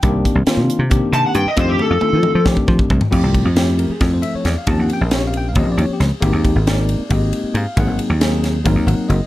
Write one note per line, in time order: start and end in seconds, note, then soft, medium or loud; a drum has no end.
0.03 0.24 C2 loud
0.03 0.38 D#3 loud
0.03 0.38 A#3 medium
0.03 0.38 C4 medium
0.03 0.38 D4 medium
0.03 0.39 G4 loud
0.03 kick loud
0.03 closed hi-hat medium
0.25 kick medium
0.25 closed hi-hat medium
0.35 0.46 C2 medium
0.47 0.82 D#3 medium
0.47 0.82 A#3 medium
0.47 0.82 C4 medium
0.47 0.82 D4 medium
0.47 0.83 F4 medium
0.47 muted slap bass stroke soft
0.47 snare loud
0.47 closed hi-hat medium
0.57 0.68 C3 medium
0.70 closed hi-hat medium
0.79 1.00 C3 medium
0.90 1.43 D#3 medium
0.90 1.43 A#3 medium
0.90 1.43 C4 medium
0.90 1.43 D4 medium
0.90 1.44 G4 medium
0.90 kick loud
0.90 closed hi-hat medium
1.13 1.23 C3 loud
1.13 1.24 A5 medium
1.13 closed hi-hat medium
1.26 1.35 F#5 medium
1.35 1.45 G2 medium
1.35 1.47 G5 loud
1.35 closed hi-hat medium
1.46 1.58 D#5 medium
1.46 muted slap bass stroke soft
1.56 1.78 F2 loud
1.56 1.92 D#3 medium
1.56 1.92 A3 medium
1.56 1.92 C4 medium
1.56 1.92 D4 medium
1.56 1.92 G4 medium
1.56 1.68 C5 medium
1.56 kick loud
1.56 closed hi-hat medium
1.69 1.80 G4 medium
1.79 2.43 A4 medium
1.79 high tom medium
1.90 2.01 F2 medium
2.01 2.36 D#3 medium
2.01 2.37 A3 medium
2.01 2.37 C4 medium
2.01 2.37 D4 medium
2.01 2.37 F4 medium
2.01 muted slap bass stroke soft
2.01 high tom medium
2.13 2.23 F3 medium
2.23 mid tom medium
2.35 2.56 F3 medium
2.45 2.98 D#3 medium
2.45 2.98 A3 medium
2.45 2.98 C4 medium
2.45 2.99 D4 medium
2.45 2.99 G4 loud
2.45 kick loud
2.45 snare medium
2.57 kick medium
2.68 2.78 F3 medium
2.68 kick loud
2.79 kick medium
2.90 3.00 C2 medium
2.90 kick loud
3.01 muted slap bass stroke soft
3.01 floor tom medium
3.11 3.23 F2 loud
3.11 3.46 F3 medium
3.11 3.47 A3 medium
3.11 3.47 C4 medium
3.11 3.47 E4 medium
3.11 3.47 G4 loud
3.11 kick loud
3.11 crash loud
3.23 3.44 C2 medium
3.34 kick medium
3.34 ride medium
3.45 3.87 F2 medium
3.56 3.91 F3 medium
3.56 3.91 A3 medium
3.56 3.92 C4 medium
3.56 3.92 E4 medium
3.56 3.92 G4 medium
3.56 snare loud
3.56 ride medium
3.79 3.90 A#4 medium
3.79 ride medium
3.90 4.02 G#4 medium
3.90 muted slap bass stroke soft
4.00 4.21 F2 medium
4.00 4.53 F3 medium
4.00 4.53 A3 medium
4.00 4.53 C4 medium
4.00 4.53 E4 medium
4.00 4.53 A4 medium
4.00 kick loud
4.00 snare soft
4.00 ride medium
4.13 4.24 C5 medium
4.22 4.33 E5 loud
4.22 ride medium
4.35 4.46 C#5 medium
4.35 muted slap bass stroke soft
4.45 4.55 E2 medium
4.45 4.56 D5 medium
4.45 snare soft
4.45 ride medium
4.58 4.68 F5 medium
4.67 4.78 D#2 loud
4.67 5.02 F3 medium
4.67 5.02 A#3 medium
4.67 5.02 C4 medium
4.67 5.03 C#4 medium
4.67 5.03 G4 medium
4.67 4.79 A5 loud
4.67 kick loud
4.67 ride medium
4.79 4.89 D#2 medium
4.79 4.91 F#5 medium
4.90 5.02 G5 loud
4.90 ride medium
5.01 5.52 A#1 medium
5.01 5.14 A#4 medium
5.11 5.46 F3 medium
5.11 5.47 A#3 medium
5.11 5.47 C4 medium
5.11 5.47 C#4 medium
5.11 5.47 G4 medium
5.11 snare loud
5.11 ride medium
5.16 5.24 C#5 medium
5.27 5.36 F5 medium
5.34 5.46 G5 medium
5.34 ride medium
5.49 5.58 F5 medium
5.55 5.67 D#2 medium
5.55 6.08 F3 medium
5.55 6.08 A#3 medium
5.55 6.08 C4 medium
5.55 6.08 C#4 medium
5.55 5.92 G4 medium
5.55 5.68 D#5 medium
5.55 kick loud
5.55 ride medium
5.67 5.77 A#1 medium
5.72 5.80 D5 medium
5.77 5.88 D#2 loud
5.77 ride medium
5.82 5.91 C#5 medium
5.89 5.99 G4 medium
5.89 muted slap bass stroke soft
6.00 6.10 C#2 medium
6.00 snare soft
6.00 ride medium
6.20 6.32 G#1 medium
6.20 6.56 G#3 medium
6.20 6.57 A#3 medium
6.20 6.57 C4 medium
6.20 6.57 D#4 medium
6.20 6.57 G4 loud
6.20 kick loud
6.20 ride medium
6.33 6.54 D#2 medium
6.45 kick medium
6.45 ride medium
6.55 6.97 G#1 medium
6.66 7.01 G#3 medium
6.66 7.01 A#3 medium
6.66 7.02 C4 medium
6.66 7.02 D#4 medium
6.66 7.02 A#4 medium
6.66 7.10 D5 medium
6.66 snare loud
6.66 ride medium
6.89 ride medium
7.00 muted slap bass stroke soft
7.09 7.31 G#1 loud
7.09 7.62 G#3 medium
7.09 7.62 A#3 medium
7.09 7.63 C4 medium
7.09 7.63 D#4 medium
7.09 7.63 G4 medium
7.09 kick loud
7.09 ride medium
7.14 7.54 D#5 medium
7.33 ride medium
7.44 muted slap bass stroke soft
7.54 7.65 G#2 loud
7.54 7.78 F5 medium
7.54 ride medium
7.76 7.87 G#1 loud
7.76 8.12 F#3 medium
7.76 8.12 A#3 medium
7.76 8.12 C4 medium
7.76 8.12 D#4 medium
7.76 8.12 G#4 medium
7.76 8.00 F#5 medium
7.76 kick loud
7.76 ride medium
7.87 7.98 G#1 medium
7.99 ride medium
8.10 8.61 D#2 medium
8.20 8.56 F#3 medium
8.20 8.56 A#3 medium
8.20 8.56 C4 medium
8.20 8.56 D#4 medium
8.20 8.56 G#4 medium
8.20 snare loud
8.20 ride medium
8.44 snare soft
8.44 ride medium
8.64 8.77 G#1 medium
8.64 9.17 F#3 medium
8.64 9.17 A#3 medium
8.64 9.18 C4 medium
8.64 9.18 D#4 medium
8.64 9.18 A#4 medium
8.64 kick loud
8.64 ride medium
8.75 8.86 D#2 medium
8.87 8.97 G#1 medium
8.87 9.08 F#5 medium
8.87 ride medium
9.09 9.20 F#1 medium
9.09 9.27 D#5 medium
9.09 ride medium